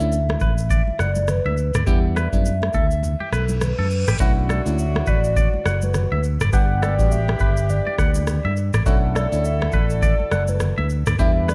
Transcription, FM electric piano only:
0.00 0.19 A3 medium
0.00 0.19 C#4 medium
0.00 0.19 D4 medium
0.00 0.19 E4 medium
1.86 2.29 G3 medium
1.86 2.29 B3 medium
1.86 2.29 D4 medium
1.86 2.29 E4 loud
2.33 2.52 G3 medium
2.33 2.52 B3 medium
2.33 2.52 D4 medium
2.33 2.52 E4 medium
4.19 4.62 A3 medium
4.19 4.62 C#4 medium
4.19 4.62 D4 medium
4.19 4.62 E4 loud
4.66 4.85 A3 medium
4.66 4.85 C#4 medium
4.66 4.85 D4 medium
4.66 4.85 E4 medium
6.53 6.95 G3 medium
6.53 6.95 B3 medium
6.53 6.95 D4 medium
6.53 6.95 F#5 loud
6.99 7.18 G3 medium
6.99 7.18 B3 medium
6.99 7.18 D4 medium
6.99 7.18 F#4 medium
8.86 9.28 A3 loud
8.86 9.28 C#4 medium
8.86 9.28 D4 medium
8.86 9.28 E4 loud
9.32 9.51 A3 medium
9.32 9.51 C#4 medium
9.32 9.51 D4 medium
9.32 9.51 E4 medium
11.19 11.54 G3 loud
11.19 11.54 B3 medium
11.19 11.54 D4 medium
11.19 11.54 E4 loud

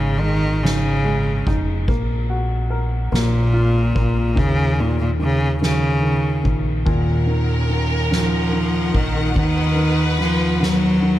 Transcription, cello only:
0.00 0.22 C#3 loud
0.20 0.65 D#3 loud
0.63 1.57 C#3 medium
3.13 4.40 A#2 loud
4.39 4.82 C#3 loud
4.80 5.00 A#2 loud
5.01 5.10 A#2 medium
5.21 5.59 C#3 loud
5.63 6.52 C#3 loud
8.13 8.97 F3 medium
8.96 9.37 D#3 medium
9.37 10.16 D#3 loud
10.21 10.64 F3 loud
10.62 11.19 F#3 loud

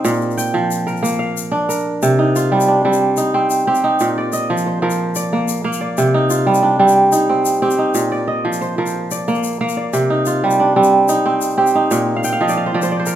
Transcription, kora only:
0.00 0.11 C3 medium
0.00 0.11 G3 medium
0.00 1.52 C4 medium
0.00 1.18 D#4 medium
0.00 0.64 G4 medium
0.05 2.08 A#2 medium
0.37 1.31 G5 medium
0.54 2.08 F3 medium
0.87 1.68 A#4 medium
1.03 2.95 A#3 medium
1.19 2.19 F5 medium
1.52 2.25 D4 medium
1.69 2.96 A#4 medium
2.03 4.05 C3 medium
2.19 2.74 D#4 medium
2.36 3.87 F4 medium
2.52 2.84 G3 medium
2.68 3.24 D4 medium
2.85 4.05 G3 medium
2.85 3.34 C4 medium
3.18 3.83 D#4 medium
3.34 3.67 C4 medium
3.67 5.47 C4 medium
3.67 5.09 G4 medium
3.84 4.24 D#4 medium
4.01 6.03 A#2 medium
4.18 5.15 D5 medium
4.33 5.22 D#5 medium
4.50 4.81 F3 medium
4.66 5.85 C5 medium
4.82 6.03 F3 medium
4.82 6.10 A#4 medium
5.16 5.80 D5 medium
5.33 5.64 A#3 medium
5.64 7.57 A#3 medium
5.64 6.64 F5 medium
5.81 6.20 D5 medium
5.98 8.01 C3 medium
6.14 6.69 D#4 medium
6.30 7.82 F4 medium
6.46 6.78 G3 medium
6.63 7.18 D4 medium
6.79 8.01 G3 medium
6.79 7.29 C4 medium
7.12 7.78 D#4 medium
7.29 7.62 C4 medium
7.62 9.42 C4 medium
7.62 9.03 G4 medium
7.79 8.18 D#4 medium
7.95 9.98 A#2 medium
8.12 9.11 D5 medium
8.28 9.17 D#5 medium
8.45 8.77 F3 medium
8.61 9.80 C5 medium
8.78 9.98 F3 medium
8.78 10.05 A#4 medium
9.11 9.76 D5 medium
9.28 9.60 A#3 medium
9.61 11.54 A#3 medium
9.61 10.61 F5 medium
9.77 10.16 D5 medium
9.93 11.96 C3 medium
10.10 10.66 D#4 medium
10.27 11.78 F4 medium
10.44 10.75 G3 medium
10.60 11.15 D4 medium
10.76 11.96 G3 medium
10.76 11.25 C4 medium
11.09 11.75 D#4 medium
11.26 11.57 C4 medium
11.58 13.15 C4 medium
11.58 12.99 G4 medium
11.75 12.55 D#4 medium
11.91 13.15 A#2 medium
12.16 12.32 F5 medium
12.24 13.15 G5 medium
12.33 12.57 F5 medium
12.41 12.73 F3 medium
12.41 12.81 D#5 medium
12.49 12.74 D5 medium
12.57 13.15 F5 medium
12.66 12.82 C5 medium
12.74 13.15 F3 medium
12.74 12.91 D5 medium
12.83 12.99 C5 medium
12.92 13.15 D5 medium
12.99 13.15 C5 medium
13.06 13.15 A#4 medium

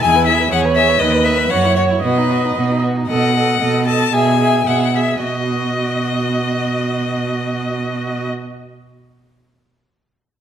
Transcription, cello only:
0.02 0.45 E2 medium
0.51 0.94 E2 medium
1.00 1.45 D#2 medium
1.51 1.97 F#2 soft
2.03 2.50 B2 soft
2.56 3.03 B2 soft
3.09 3.55 B2 soft
3.61 4.07 B2 soft
4.13 4.60 B2 soft
4.66 5.17 B2 soft
5.24 8.28 B2 soft

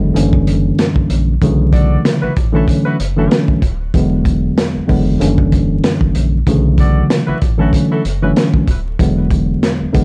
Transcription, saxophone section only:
1.73 1.98 F#4 medium
1.73 1.98 A4 medium
1.73 1.98 D5 medium
2.22 2.33 E4 medium
2.22 2.33 F#4 medium
2.22 2.33 B4 medium
2.54 2.65 E4 medium
2.54 2.65 F#4 medium
2.54 2.65 A4 medium
2.85 2.96 E4 medium
2.85 2.96 F#4 medium
2.85 2.96 B4 medium
3.17 3.28 E4 medium
3.17 3.28 F#4 medium
3.17 3.28 A4 medium
6.79 7.04 F#4 medium
6.79 7.04 A4 medium
6.79 7.04 D5 loud
7.27 7.38 E4 medium
7.27 7.38 F#4 medium
7.27 7.38 B4 medium
7.59 7.71 E4 medium
7.59 7.71 F#4 medium
7.59 7.71 A4 medium
7.91 8.02 E4 medium
7.91 8.02 F#4 medium
7.91 8.02 A4 loud
8.22 8.31 E4 medium
8.22 8.31 F#4 medium
8.22 8.31 B4 medium

